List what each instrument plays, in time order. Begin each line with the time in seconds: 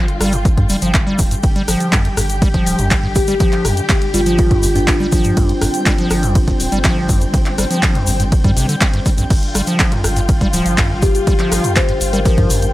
Already playing: string section D3 G3 F4, ambient pad G5
0.08 closed hi-hat
0.21 sub bass G1, acid bass G3, cross-stick, open hi-hat, shaker
0.32 acid bass G2, closed hi-hat, shaker
0.45 acid bass G2, kick, closed hi-hat, shaker
0.57 sub bass G2, kick, closed hi-hat
0.69 sub bass F1, acid bass G3, open hi-hat, shaker
0.82 sub bass G1, acid bass F3, closed hi-hat, shaker
0.94 kick, clap, closed hi-hat, shaker
1.07 acid bass G3
1.18 sub bass D1, acid bass G2, kick, open hi-hat, shaker
1.31 acid bass G2, closed hi-hat, shaker
1.43 sub bass G1, string section G4, kick, closed hi-hat, ride, shaker
1.56 acid bass G3, closed hi-hat
1.68 sub bass G1, acid bass F3, cross-stick, open hi-hat, shaker
1.80 closed hi-hat, shaker
1.93 acid bass F2, kick, clap, closed hi-hat, ride, shaker
2.05 acid bass G2, closed hi-hat
2.17 sub bass G1, acid bass G2, cross-stick, open hi-hat, shaker
2.30 closed hi-hat, shaker
2.42 acid bass G3, kick, closed hi-hat, ride, shaker
2.54 acid bass F3, kick, closed hi-hat
2.66 sub bass D1, open hi-hat, shaker
2.79 sub bass G1, acid bass F2, closed hi-hat, shaker
2.91 acid bass G2, kick, clap, closed hi-hat, ride, shaker
3.03 acid bass G2
3.15 kalimba G4, kick, open hi-hat, shaker
3.27 acid bass G3, kalimba G4, closed hi-hat, shaker
3.40 acid bass F3, kick, closed hi-hat, ride, shaker
3.52 clap, closed hi-hat
3.65 sub bass G1, acid bass F2, cross-stick, open hi-hat, shaker
3.77 acid bass G2, closed hi-hat, shaker
3.89 acid bass G2, kick, clap, closed hi-hat, ride, shaker
4.02 closed hi-hat
4.14 sub bass G1, acid bass G3, kalimba F4, open hi-hat, shaker
4.26 acid bass F3, closed hi-hat, shaker
4.38 kick, closed hi-hat, ride, shaker
4.51 acid bass F2, sub bass G2, kick, closed hi-hat
4.63 sub bass G1, acid bass G2, open hi-hat, shaker
4.75 acid bass G2, kalimba D4, closed hi-hat, shaker
4.88 kalimba D4, kick, clap, closed hi-hat, ride, shaker
5.00 acid bass G3
5.12 sub bass A#1, acid bass F3, kick, open hi-hat, shaker
5.24 sub bass G2, closed hi-hat, shaker
5.37 sub bass G1, acid bass F2, string section C4, kick, closed hi-hat, ride, shaker
5.49 acid bass G2, closed hi-hat
5.62 sub bass G1, acid bass G2, cross-stick, open hi-hat, shaker
5.74 closed hi-hat, shaker
5.86 acid bass G3, kick, clap, closed hi-hat, ride, shaker
5.98 acid bass F3, closed hi-hat
6.10 sub bass G1, cross-stick, open hi-hat, shaker
6.23 acid bass F2, closed hi-hat, shaker
6.35 acid bass G2, kick, closed hi-hat, ride, shaker
6.48 acid bass G2, kick, closed hi-hat
6.60 sub bass D1, open hi-hat, shaker
6.72 sub bass G1, acid bass G3, closed hi-hat, shaker
6.84 acid bass F3, kick, clap, closed hi-hat, ride, shaker
7.09 acid bass F2, kick, open hi-hat, shaker
7.21 acid bass G2, closed hi-hat, shaker
7.34 acid bass G2, kick, closed hi-hat, ride, shaker
7.46 clap, closed hi-hat
7.58 sub bass G1, acid bass G3, cross-stick, open hi-hat, shaker
7.71 acid bass F3, closed hi-hat, shaker
7.82 kick, clap, closed hi-hat, ride, shaker
7.95 acid bass F2, closed hi-hat
8.07 sub bass G1, acid bass G2, open hi-hat, shaker
8.20 acid bass G2, closed hi-hat, shaker
8.32 kick, closed hi-hat, ride, shaker
8.44 sub bass G2, acid bass G3, kick, closed hi-hat
8.57 sub bass G1, acid bass C3, open hi-hat, shaker
8.69 acid bass D3, closed hi-hat, shaker
8.81 acid bass G3, kick, clap, closed hi-hat, ride, shaker
8.93 acid bass G2, closed hi-hat
9.06 acid bass G3, kick, open hi-hat, shaker
9.18 sub bass A#1, acid bass G2, closed hi-hat, shaker
9.30 sub bass G1, acid bass G2, string section F4, kick, closed hi-hat, crash, ride, shaker
9.43 closed hi-hat
9.55 sub bass G1, acid bass G3, cross-stick, open hi-hat, shaker
9.67 acid bass F3, closed hi-hat, shaker
9.80 kick, clap, closed hi-hat, ride, shaker
9.92 acid bass F2, closed hi-hat
10.04 sub bass G1, acid bass G2, cross-stick, open hi-hat, shaker
10.16 acid bass G2, closed hi-hat, shaker
10.28 kick, closed hi-hat, ride, shaker
10.41 acid bass G3, kick, closed hi-hat
10.53 sub bass D1, acid bass F3, open hi-hat, shaker
10.66 sub bass G1, closed hi-hat, shaker
10.77 acid bass F2, kick, clap, closed hi-hat, ride, shaker
10.90 acid bass G2
11.02 acid bass G2, kalimba G4, kick, open hi-hat, shaker
11.15 kalimba G4, closed hi-hat, shaker
11.27 acid bass G3, kick, closed hi-hat, ride, shaker
11.39 acid bass F3, clap, closed hi-hat
11.52 sub bass G1, cross-stick, open hi-hat, shaker
11.64 acid bass F2, closed hi-hat, shaker
11.76 acid bass G2, kalimba C5, kick, clap, closed hi-hat, ride, shaker
11.89 acid bass G2, closed hi-hat
12.01 sub bass G1, open hi-hat, shaker
12.13 acid bass G3, kalimba A#4, closed hi-hat, shaker
12.25 acid bass F3, kalimba A#4, kick, closed hi-hat, ride, shaker
12.38 sub bass G2, kick, closed hi-hat
12.50 sub bass G1, acid bass F2, open hi-hat, shaker
12.62 acid bass G2, closed hi-hat, shaker